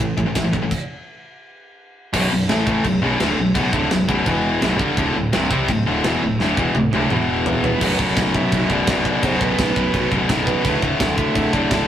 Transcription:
0.00 A1 A2 E3
0.17 A1 A2 E3, kick
0.26 A2 E3
0.35 A1 A2 E3, kick, snare, ride bell
0.44 A2 E3
0.53 G1 A2 E3, kick
0.62 A2 E3
0.71 kick, crash
2.13 B0 B1 F#2 B2, kick, crash, china
2.32 B0 B1 F#2
2.49 A1 A2 E3 A3, snare, china
2.66 A1 A2 E3 A3, kick
2.84 B0 B1 F#2, kick, china
3.02 B0 B1 F#2 B2
3.19 D1 D2 A2 D3, snare, china
3.38 B0 B1 F#2
3.54 B0 B1 F#2 B2, kick, china
3.73 D1 D2 A2 D3, kick
3.90 B0 B1 F#2, snare, china
4.08 B0 B1 F#2 B2, kick
4.26 E1 E2 B2 E3, kick, china
4.62 B0 B1 F#2 B2, snare, china
4.79 G1 G2 D3 G3, kick
4.97 D1 D2 A2 D3, kick, china
5.15 D1 D2 A2
5.33 C1 C2 G2 C3, snare, china
5.51 C2 C3 G3 C4, kick
5.69 D1 D2 A2, kick, china
5.86 D1 D2 A2 D3
6.04 E1 E2 B2 E3, snare, china
6.22 D1 D2 A2
6.40 D1 D2 A2 D3, snare
6.57 E1 E2 B2 E3, kick
6.75 D1 D2 A2, high tom
6.93 D1 D2 A2 D3, high tom
7.10 E1 E2 B2 E3, mid tom
7.46 floor tom
7.63 B4, floor tom
7.80 B0 B1 F#2 B2, kick, crash
7.99 B0 F#5, kick
8.17 B0, kick, snare, crash
8.34 E5, kick
8.52 B0 B1 F#2 B2, kick, crash
8.69 B0 B1 F#2 B2 D5, kick
8.87 B0 B1 F#2 B2, kick, snare, crash
9.05 D5, kick
9.22 B0 B1 F#2 C5, kick, crash
9.26 B2
9.41 B0 B4, kick
9.59 B0, kick, snare, crash
9.76 B0, kick
9.93 B0 B1 F#2 B2, kick, crash
10.11 B0 B1 F#2 B2, kick
10.28 B0 B1 F#2 B2, kick, snare, crash
10.47 B4, kick
10.64 D1 D2 A2, kick, crash
10.68 D3
10.82 D1 F#5, kick
11.00 D1, kick, snare, crash
11.18 E5, kick
11.35 D1 D2 A2 D3, kick, crash
11.53 D1 D2 A2 D3 D5, kick
11.70 D1 D2 A2 D3, kick, snare, crash

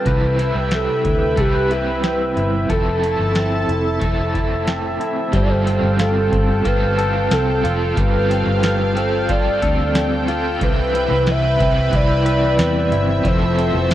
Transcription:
Already playing: G3 C4 F4 B4
0.05 C2 C3 E3 G3 C4 E4 B4 E5 G5, kick, closed hi-hat
0.38 G3 C4 E4 B4, closed hi-hat
0.55 C2
0.71 C4 A4, snare, closed hi-hat
1.04 D2 E4, kick, closed hi-hat
1.36 C2 G3 C4 A4, kick, closed hi-hat
1.40 E4 G4
1.44 B4
1.54 B4
1.71 E4 B4, closed hi-hat
2.03 C4, snare, closed hi-hat
2.36 G1 E4, closed hi-hat
2.69 F1 F3 A3 C4 E4 A4 A5, kick, closed hi-hat
3.03 C4 E4 A4, closed hi-hat
3.19 G1
3.35 C4, snare, closed hi-hat
3.68 F1 E4, closed hi-hat
4.00 F1 A3 C4 A4, kick, closed hi-hat
4.06 E4 A4
4.34 E4, kick, closed hi-hat
4.67 C4, snare, closed hi-hat
5.00 E4, closed hi-hat
5.32 G1 G3 C4 F4 A4 C5 F5 G5, kick, closed hi-hat
5.38 A4
5.43 D5
5.50 C5
5.66 C4, closed hi-hat
5.83 G1
5.99 F4 A4, snare, closed hi-hat, tambourine
6.32 G1 C4, kick, closed hi-hat
6.65 G1 G3 C4 F4 A4 B4, kick, closed hi-hat
6.98 A4, closed hi-hat
7.31 C2 C4 A4, snare, closed hi-hat, tambourine
7.63 F1 C4 F4 A4, closed hi-hat
7.97 G1 G3 C4 F4 A4 B4, kick, closed hi-hat
8.30 C4, closed hi-hat
8.47 G1
8.63 F4, snare, closed hi-hat, tambourine
8.95 C4 F4 A4 C5, closed hi-hat
9.28 G3 C4 F4 A4 D5, kick, closed hi-hat
9.62 D2 A4, kick, closed hi-hat
9.95 C4, snare, closed hi-hat, tambourine
10.27 C4 F4 A4, closed hi-hat
10.60 C2 C3 E3 G3 C4 E4 B4 E5, kick, closed hi-hat
10.94 C4, closed hi-hat
11.11 C2
11.27 E4 E5, snare, closed hi-hat, tambourine
11.59 C2 G3 C4 E4 B4, kick, closed hi-hat
11.91 C2 C3 E3 G3 C4 E4, kick, closed hi-hat
11.95 E4 B4 D5
12.26 B4, closed hi-hat
12.59 E2 C4, snare, closed hi-hat, tambourine
12.92 G1 E4, closed hi-hat
13.23 F1 F3 A3 C4 A4 C5, kick, closed hi-hat
13.27 E4 A4 C5
13.58 C4, closed hi-hat
13.74 F1
13.90 E4, snare, closed hi-hat, tambourine

